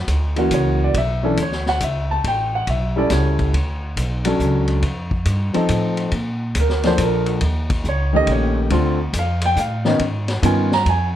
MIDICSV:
0, 0, Header, 1, 5, 480
1, 0, Start_track
1, 0, Tempo, 431034
1, 1059, Time_signature, 3, 2, 24, 8
1, 12427, End_track
2, 0, Start_track
2, 0, Title_t, "Grand piano"
2, 0, Program_c, 0, 0
2, 403, Note_on_c, 0, 52, 57
2, 414, Note_on_c, 0, 58, 49
2, 420, Note_on_c, 0, 61, 52
2, 429, Note_on_c, 0, 66, 65
2, 602, Note_on_c, 0, 73, 73
2, 899, Note_off_c, 0, 73, 0
2, 934, Note_on_c, 0, 74, 76
2, 1020, Note_off_c, 0, 52, 0
2, 1026, Note_off_c, 0, 58, 0
2, 1028, Note_off_c, 0, 61, 0
2, 1033, Note_off_c, 0, 66, 0
2, 1073, Note_off_c, 0, 74, 0
2, 1087, Note_on_c, 0, 76, 80
2, 1373, Note_on_c, 0, 52, 63
2, 1376, Note_on_c, 0, 61, 59
2, 1382, Note_off_c, 0, 76, 0
2, 1384, Note_on_c, 0, 62, 63
2, 1390, Note_on_c, 0, 69, 74
2, 1521, Note_off_c, 0, 52, 0
2, 1523, Note_off_c, 0, 61, 0
2, 1527, Note_off_c, 0, 62, 0
2, 1529, Note_off_c, 0, 69, 0
2, 1587, Note_on_c, 0, 73, 71
2, 1873, Note_off_c, 0, 73, 0
2, 1880, Note_on_c, 0, 78, 92
2, 2026, Note_off_c, 0, 78, 0
2, 2047, Note_on_c, 0, 76, 71
2, 2342, Note_off_c, 0, 76, 0
2, 2352, Note_on_c, 0, 81, 95
2, 2502, Note_off_c, 0, 81, 0
2, 2534, Note_on_c, 0, 79, 80
2, 2826, Note_off_c, 0, 79, 0
2, 2843, Note_on_c, 0, 78, 80
2, 2989, Note_off_c, 0, 78, 0
2, 3004, Note_on_c, 0, 76, 69
2, 3295, Note_on_c, 0, 55, 60
2, 3300, Note_on_c, 0, 61, 58
2, 3301, Note_off_c, 0, 76, 0
2, 3307, Note_on_c, 0, 64, 58
2, 3317, Note_on_c, 0, 69, 70
2, 3321, Note_on_c, 0, 74, 79
2, 3467, Note_off_c, 0, 74, 0
2, 3486, Note_on_c, 0, 73, 72
2, 3907, Note_off_c, 0, 55, 0
2, 3910, Note_off_c, 0, 61, 0
2, 3913, Note_off_c, 0, 64, 0
2, 3918, Note_off_c, 0, 69, 0
2, 4389, Note_off_c, 0, 73, 0
2, 4734, Note_on_c, 0, 54, 66
2, 4740, Note_on_c, 0, 61, 62
2, 4748, Note_on_c, 0, 62, 58
2, 4759, Note_on_c, 0, 69, 71
2, 5347, Note_off_c, 0, 54, 0
2, 5350, Note_off_c, 0, 61, 0
2, 5354, Note_off_c, 0, 62, 0
2, 5359, Note_off_c, 0, 69, 0
2, 6164, Note_on_c, 0, 53, 61
2, 6174, Note_on_c, 0, 60, 61
2, 6183, Note_on_c, 0, 63, 62
2, 6187, Note_on_c, 0, 69, 72
2, 6781, Note_off_c, 0, 53, 0
2, 6787, Note_off_c, 0, 60, 0
2, 6791, Note_off_c, 0, 63, 0
2, 6793, Note_off_c, 0, 69, 0
2, 7349, Note_on_c, 0, 70, 65
2, 7621, Note_on_c, 0, 53, 63
2, 7632, Note_on_c, 0, 58, 54
2, 7634, Note_off_c, 0, 70, 0
2, 7637, Note_on_c, 0, 62, 56
2, 7644, Note_on_c, 0, 69, 69
2, 7651, Note_on_c, 0, 72, 84
2, 7793, Note_off_c, 0, 72, 0
2, 7831, Note_on_c, 0, 70, 66
2, 8115, Note_off_c, 0, 70, 0
2, 8230, Note_off_c, 0, 53, 0
2, 8235, Note_off_c, 0, 58, 0
2, 8238, Note_off_c, 0, 62, 0
2, 8241, Note_off_c, 0, 69, 0
2, 8782, Note_on_c, 0, 73, 78
2, 9053, Note_on_c, 0, 51, 61
2, 9062, Note_on_c, 0, 57, 54
2, 9069, Note_on_c, 0, 61, 54
2, 9071, Note_off_c, 0, 73, 0
2, 9075, Note_on_c, 0, 67, 63
2, 9090, Note_on_c, 0, 75, 99
2, 9232, Note_off_c, 0, 75, 0
2, 9262, Note_on_c, 0, 73, 73
2, 9551, Note_off_c, 0, 73, 0
2, 9666, Note_off_c, 0, 51, 0
2, 9670, Note_off_c, 0, 57, 0
2, 9674, Note_off_c, 0, 61, 0
2, 9677, Note_off_c, 0, 67, 0
2, 9694, Note_on_c, 0, 50, 72
2, 9696, Note_on_c, 0, 57, 66
2, 9708, Note_on_c, 0, 60, 61
2, 9714, Note_on_c, 0, 65, 75
2, 9983, Note_off_c, 0, 50, 0
2, 9985, Note_off_c, 0, 57, 0
2, 9991, Note_off_c, 0, 60, 0
2, 9993, Note_off_c, 0, 65, 0
2, 10232, Note_on_c, 0, 77, 81
2, 10515, Note_off_c, 0, 77, 0
2, 10530, Note_on_c, 0, 79, 96
2, 10672, Note_off_c, 0, 79, 0
2, 10683, Note_on_c, 0, 77, 70
2, 10974, Note_on_c, 0, 51, 72
2, 10980, Note_off_c, 0, 77, 0
2, 10980, Note_on_c, 0, 59, 63
2, 10988, Note_on_c, 0, 61, 62
2, 10995, Note_on_c, 0, 63, 75
2, 11122, Note_off_c, 0, 51, 0
2, 11125, Note_off_c, 0, 59, 0
2, 11129, Note_off_c, 0, 61, 0
2, 11132, Note_off_c, 0, 63, 0
2, 11608, Note_on_c, 0, 51, 58
2, 11613, Note_on_c, 0, 59, 57
2, 11622, Note_on_c, 0, 61, 56
2, 11629, Note_on_c, 0, 65, 66
2, 11646, Note_on_c, 0, 80, 68
2, 11900, Note_off_c, 0, 51, 0
2, 11903, Note_off_c, 0, 59, 0
2, 11907, Note_off_c, 0, 61, 0
2, 11911, Note_off_c, 0, 65, 0
2, 11941, Note_off_c, 0, 80, 0
2, 11955, Note_on_c, 0, 82, 104
2, 12104, Note_off_c, 0, 82, 0
2, 12130, Note_on_c, 0, 80, 76
2, 12312, Note_off_c, 0, 80, 0
2, 12427, End_track
3, 0, Start_track
3, 0, Title_t, "Upright bass"
3, 0, Program_c, 1, 32
3, 87, Note_on_c, 1, 38, 74
3, 558, Note_off_c, 1, 38, 0
3, 565, Note_on_c, 1, 37, 81
3, 1038, Note_off_c, 1, 37, 0
3, 1046, Note_on_c, 1, 35, 74
3, 1518, Note_off_c, 1, 35, 0
3, 1534, Note_on_c, 1, 38, 73
3, 2003, Note_off_c, 1, 38, 0
3, 2012, Note_on_c, 1, 37, 76
3, 2482, Note_off_c, 1, 37, 0
3, 2498, Note_on_c, 1, 33, 77
3, 2965, Note_off_c, 1, 33, 0
3, 2976, Note_on_c, 1, 35, 80
3, 3444, Note_off_c, 1, 35, 0
3, 3457, Note_on_c, 1, 37, 86
3, 3925, Note_off_c, 1, 37, 0
3, 3936, Note_on_c, 1, 38, 79
3, 4404, Note_off_c, 1, 38, 0
3, 4415, Note_on_c, 1, 35, 84
3, 4884, Note_off_c, 1, 35, 0
3, 4893, Note_on_c, 1, 37, 79
3, 5363, Note_off_c, 1, 37, 0
3, 5371, Note_on_c, 1, 41, 74
3, 5842, Note_off_c, 1, 41, 0
3, 5852, Note_on_c, 1, 43, 78
3, 6152, Note_off_c, 1, 43, 0
3, 6337, Note_on_c, 1, 45, 76
3, 6805, Note_off_c, 1, 45, 0
3, 6812, Note_on_c, 1, 46, 75
3, 7282, Note_off_c, 1, 46, 0
3, 7298, Note_on_c, 1, 38, 76
3, 7765, Note_off_c, 1, 38, 0
3, 7775, Note_on_c, 1, 34, 86
3, 8244, Note_off_c, 1, 34, 0
3, 8254, Note_on_c, 1, 39, 80
3, 8723, Note_off_c, 1, 39, 0
3, 8732, Note_on_c, 1, 37, 79
3, 9202, Note_off_c, 1, 37, 0
3, 9214, Note_on_c, 1, 34, 90
3, 9683, Note_off_c, 1, 34, 0
3, 9692, Note_on_c, 1, 38, 82
3, 10162, Note_off_c, 1, 38, 0
3, 10167, Note_on_c, 1, 41, 82
3, 10639, Note_off_c, 1, 41, 0
3, 10648, Note_on_c, 1, 45, 83
3, 11120, Note_off_c, 1, 45, 0
3, 11129, Note_on_c, 1, 44, 82
3, 11600, Note_off_c, 1, 44, 0
3, 11610, Note_on_c, 1, 43, 83
3, 12080, Note_off_c, 1, 43, 0
3, 12091, Note_on_c, 1, 41, 83
3, 12427, Note_off_c, 1, 41, 0
3, 12427, End_track
4, 0, Start_track
4, 0, Title_t, "Muted upright bass strokes"
4, 6185, Note_on_c, 9, 29, 35
4, 6296, Note_off_c, 9, 29, 0
4, 12427, End_track
5, 0, Start_track
5, 0, Title_t, "Drums"
5, 87, Note_on_c, 9, 36, 19
5, 87, Note_on_c, 9, 44, 46
5, 87, Note_on_c, 9, 51, 59
5, 198, Note_off_c, 9, 44, 0
5, 198, Note_off_c, 9, 51, 0
5, 199, Note_off_c, 9, 36, 0
5, 404, Note_on_c, 9, 51, 43
5, 516, Note_off_c, 9, 51, 0
5, 566, Note_on_c, 9, 44, 54
5, 566, Note_on_c, 9, 51, 57
5, 569, Note_on_c, 9, 36, 20
5, 677, Note_off_c, 9, 44, 0
5, 677, Note_off_c, 9, 51, 0
5, 680, Note_off_c, 9, 36, 0
5, 1051, Note_on_c, 9, 36, 22
5, 1051, Note_on_c, 9, 51, 57
5, 1162, Note_off_c, 9, 36, 0
5, 1162, Note_off_c, 9, 51, 0
5, 1530, Note_on_c, 9, 44, 53
5, 1530, Note_on_c, 9, 51, 57
5, 1533, Note_on_c, 9, 36, 18
5, 1641, Note_off_c, 9, 44, 0
5, 1641, Note_off_c, 9, 51, 0
5, 1645, Note_off_c, 9, 36, 0
5, 1694, Note_on_c, 9, 38, 25
5, 1805, Note_off_c, 9, 38, 0
5, 1851, Note_on_c, 9, 38, 40
5, 1962, Note_off_c, 9, 38, 0
5, 2010, Note_on_c, 9, 44, 53
5, 2010, Note_on_c, 9, 51, 61
5, 2014, Note_on_c, 9, 36, 25
5, 2121, Note_off_c, 9, 44, 0
5, 2121, Note_off_c, 9, 51, 0
5, 2125, Note_off_c, 9, 36, 0
5, 2498, Note_on_c, 9, 36, 23
5, 2498, Note_on_c, 9, 51, 55
5, 2610, Note_off_c, 9, 36, 0
5, 2610, Note_off_c, 9, 51, 0
5, 2975, Note_on_c, 9, 51, 50
5, 2977, Note_on_c, 9, 36, 19
5, 3086, Note_off_c, 9, 51, 0
5, 3089, Note_off_c, 9, 36, 0
5, 3451, Note_on_c, 9, 38, 35
5, 3451, Note_on_c, 9, 44, 52
5, 3451, Note_on_c, 9, 51, 55
5, 3457, Note_on_c, 9, 36, 24
5, 3562, Note_off_c, 9, 38, 0
5, 3562, Note_off_c, 9, 44, 0
5, 3562, Note_off_c, 9, 51, 0
5, 3569, Note_off_c, 9, 36, 0
5, 3774, Note_on_c, 9, 51, 40
5, 3776, Note_on_c, 9, 36, 46
5, 3885, Note_off_c, 9, 51, 0
5, 3887, Note_off_c, 9, 36, 0
5, 3939, Note_on_c, 9, 36, 18
5, 3943, Note_on_c, 9, 51, 53
5, 4050, Note_off_c, 9, 36, 0
5, 4054, Note_off_c, 9, 51, 0
5, 4418, Note_on_c, 9, 36, 16
5, 4421, Note_on_c, 9, 44, 44
5, 4421, Note_on_c, 9, 51, 58
5, 4529, Note_off_c, 9, 36, 0
5, 4532, Note_off_c, 9, 44, 0
5, 4532, Note_off_c, 9, 51, 0
5, 4730, Note_on_c, 9, 51, 68
5, 4841, Note_off_c, 9, 51, 0
5, 4896, Note_on_c, 9, 36, 19
5, 4897, Note_on_c, 9, 44, 46
5, 5007, Note_off_c, 9, 36, 0
5, 5009, Note_off_c, 9, 44, 0
5, 5207, Note_on_c, 9, 51, 40
5, 5319, Note_off_c, 9, 51, 0
5, 5373, Note_on_c, 9, 51, 51
5, 5375, Note_on_c, 9, 36, 19
5, 5484, Note_off_c, 9, 51, 0
5, 5486, Note_off_c, 9, 36, 0
5, 5692, Note_on_c, 9, 36, 45
5, 5803, Note_off_c, 9, 36, 0
5, 5851, Note_on_c, 9, 44, 49
5, 5851, Note_on_c, 9, 51, 55
5, 5854, Note_on_c, 9, 36, 17
5, 5963, Note_off_c, 9, 44, 0
5, 5963, Note_off_c, 9, 51, 0
5, 5965, Note_off_c, 9, 36, 0
5, 6172, Note_on_c, 9, 51, 43
5, 6283, Note_off_c, 9, 51, 0
5, 6332, Note_on_c, 9, 44, 58
5, 6332, Note_on_c, 9, 51, 61
5, 6337, Note_on_c, 9, 36, 21
5, 6444, Note_off_c, 9, 44, 0
5, 6444, Note_off_c, 9, 51, 0
5, 6448, Note_off_c, 9, 36, 0
5, 6650, Note_on_c, 9, 51, 40
5, 6761, Note_off_c, 9, 51, 0
5, 6810, Note_on_c, 9, 51, 50
5, 6816, Note_on_c, 9, 36, 23
5, 6922, Note_off_c, 9, 51, 0
5, 6928, Note_off_c, 9, 36, 0
5, 7292, Note_on_c, 9, 44, 57
5, 7292, Note_on_c, 9, 51, 60
5, 7298, Note_on_c, 9, 36, 22
5, 7403, Note_off_c, 9, 44, 0
5, 7403, Note_off_c, 9, 51, 0
5, 7409, Note_off_c, 9, 36, 0
5, 7452, Note_on_c, 9, 38, 27
5, 7564, Note_off_c, 9, 38, 0
5, 7611, Note_on_c, 9, 51, 46
5, 7616, Note_on_c, 9, 38, 42
5, 7722, Note_off_c, 9, 51, 0
5, 7727, Note_off_c, 9, 38, 0
5, 7772, Note_on_c, 9, 44, 60
5, 7772, Note_on_c, 9, 51, 65
5, 7776, Note_on_c, 9, 36, 19
5, 7883, Note_off_c, 9, 44, 0
5, 7883, Note_off_c, 9, 51, 0
5, 7888, Note_off_c, 9, 36, 0
5, 8088, Note_on_c, 9, 51, 43
5, 8199, Note_off_c, 9, 51, 0
5, 8249, Note_on_c, 9, 51, 54
5, 8256, Note_on_c, 9, 36, 20
5, 8360, Note_off_c, 9, 51, 0
5, 8368, Note_off_c, 9, 36, 0
5, 8573, Note_on_c, 9, 51, 62
5, 8575, Note_on_c, 9, 36, 58
5, 8684, Note_off_c, 9, 51, 0
5, 8686, Note_off_c, 9, 36, 0
5, 8737, Note_on_c, 9, 36, 19
5, 8737, Note_on_c, 9, 44, 50
5, 8848, Note_off_c, 9, 36, 0
5, 8848, Note_off_c, 9, 44, 0
5, 9209, Note_on_c, 9, 51, 56
5, 9215, Note_on_c, 9, 36, 19
5, 9321, Note_off_c, 9, 51, 0
5, 9326, Note_off_c, 9, 36, 0
5, 9692, Note_on_c, 9, 51, 57
5, 9693, Note_on_c, 9, 36, 24
5, 9803, Note_off_c, 9, 51, 0
5, 9805, Note_off_c, 9, 36, 0
5, 10172, Note_on_c, 9, 36, 25
5, 10172, Note_on_c, 9, 44, 56
5, 10172, Note_on_c, 9, 51, 64
5, 10283, Note_off_c, 9, 36, 0
5, 10284, Note_off_c, 9, 44, 0
5, 10284, Note_off_c, 9, 51, 0
5, 10485, Note_on_c, 9, 51, 66
5, 10596, Note_off_c, 9, 51, 0
5, 10649, Note_on_c, 9, 36, 17
5, 10649, Note_on_c, 9, 44, 58
5, 10761, Note_off_c, 9, 36, 0
5, 10761, Note_off_c, 9, 44, 0
5, 10966, Note_on_c, 9, 38, 46
5, 11078, Note_off_c, 9, 38, 0
5, 11130, Note_on_c, 9, 51, 61
5, 11131, Note_on_c, 9, 36, 19
5, 11241, Note_off_c, 9, 51, 0
5, 11242, Note_off_c, 9, 36, 0
5, 11449, Note_on_c, 9, 38, 34
5, 11449, Note_on_c, 9, 51, 41
5, 11560, Note_off_c, 9, 38, 0
5, 11560, Note_off_c, 9, 51, 0
5, 11613, Note_on_c, 9, 36, 19
5, 11615, Note_on_c, 9, 44, 49
5, 11615, Note_on_c, 9, 51, 59
5, 11724, Note_off_c, 9, 36, 0
5, 11727, Note_off_c, 9, 44, 0
5, 11727, Note_off_c, 9, 51, 0
5, 11935, Note_on_c, 9, 38, 46
5, 12046, Note_off_c, 9, 38, 0
5, 12092, Note_on_c, 9, 36, 20
5, 12095, Note_on_c, 9, 51, 52
5, 12204, Note_off_c, 9, 36, 0
5, 12206, Note_off_c, 9, 51, 0
5, 12427, End_track
0, 0, End_of_file